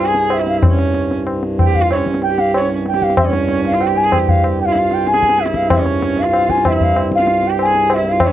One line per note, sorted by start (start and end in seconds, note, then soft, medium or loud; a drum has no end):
0.00 3.16 C2 medium
0.00 3.15 G2 medium
0.00 0.34 G#5 medium
0.06 0.41 G#4 medium
0.15 tabla te medium
0.30 0.47 E5 medium
0.30 tabla na medium
0.39 0.69 E4 medium
0.47 0.59 F5 medium
0.47 tabla te medium
0.58 0.66 E5 medium
0.63 1.12 C#5 medium
0.63 tabla na loud
0.63 tabla ge medium
0.69 1.15 C#4 medium
0.79 tabla te medium
0.94 tabla te medium
1.11 tabla te medium
1.27 tabla na medium
1.43 tabla te medium
1.59 1.77 G5 loud
1.59 tabla na medium
1.59 tabla ge medium
1.67 1.83 G4 medium
1.75 1.90 F5 loud
1.75 tabla ge soft
1.81 1.98 F4 medium
1.91 2.05 C#5 medium
1.91 tabla na medium
1.97 2.13 C#4 medium
2.07 tabla ke medium
2.14 tabla te medium
2.22 2.41 G5 loud
2.22 tabla te medium
2.29 2.62 G4 medium
2.38 2.54 F5 loud
2.38 tabla te medium
2.54 2.69 C#5 medium
2.54 tabla na medium
2.61 2.77 C#4 medium
2.70 tabla te medium
2.86 3.05 G5 loud
2.86 tabla te medium
2.94 3.23 G4 medium
2.94 tabla te medium
3.02 3.17 F5 loud
3.02 tabla ke medium
3.10 tabla te medium
3.17 8.19 C2 medium
3.17 8.19 G2 medium
3.17 3.62 C#5 medium
3.17 tabla na loud
3.17 tabla ge loud
3.26 3.75 C#4 medium
3.33 tabla te medium
3.49 tabla te medium
3.65 3.83 F5 loud
3.65 tabla te medium
3.74 3.89 F4 medium
3.80 3.99 G5 loud
3.80 tabla na medium
3.87 4.06 G4 medium
3.96 4.14 G#5 loud
3.96 tabla te medium
4.05 4.21 G#4 medium
4.12 4.31 G5 loud
4.12 tabla na medium
4.12 tabla ge medium
4.19 4.51 G4 medium
4.28 4.44 F5 loud
4.28 tabla ge medium
4.44 tabla na medium
4.59 4.66 G5 loud
4.59 tabla te medium
4.65 4.74 F4 medium
4.65 4.95 F5 loud
4.72 4.80 E4 medium
4.72 tabla te medium
4.78 5.13 F4 medium
4.91 5.09 G5 loud
4.91 tabla te medium
5.07 5.42 G#5 loud
5.07 tabla te medium
5.13 5.47 G#4 medium
5.13 tabla te medium
5.23 tabla ke medium
5.29 tabla te medium
5.38 5.58 E5 loud
5.38 tabla te medium
5.46 5.79 E4 medium
5.46 tabla te medium
5.54 5.73 F5 loud
5.54 tabla ke medium
5.63 tabla te medium
5.70 6.20 C#5 medium
5.70 tabla na loud
5.70 tabla ge loud
5.77 6.25 C#4 medium
5.86 tabla te medium
6.02 tabla te medium
6.17 6.51 F5 loud
6.17 tabla te medium
6.23 6.74 F4 medium
6.33 tabla na medium
6.49 6.68 G#5 medium
6.49 tabla ke medium
6.58 tabla te medium
6.65 6.84 E5 loud
6.65 tabla na medium
6.65 tabla ge medium
6.72 7.03 E4 medium
6.80 6.97 F5 loud
6.80 tabla ge medium
6.96 tabla na medium
7.11 7.48 F5 loud
7.11 tabla ke medium
7.18 7.52 F4 medium
7.18 tabla te medium
7.27 tabla te medium
7.43 tabla te medium
7.47 7.68 G4 medium
7.47 7.64 G5 loud
7.59 7.95 G#5 loud
7.59 tabla na medium
7.66 7.98 G#4 medium
7.74 tabla te medium
7.90 8.10 E5 loud
7.90 tabla na medium
7.96 8.14 E4 medium
8.04 tabla te medium
8.09 8.29 F4 medium
8.09 8.26 F5 loud
8.20 8.32 C2 medium
8.20 8.32 G2 medium
8.20 tabla na loud
8.20 tabla ge loud
8.25 8.32 C#4 medium
8.25 8.32 C#5 medium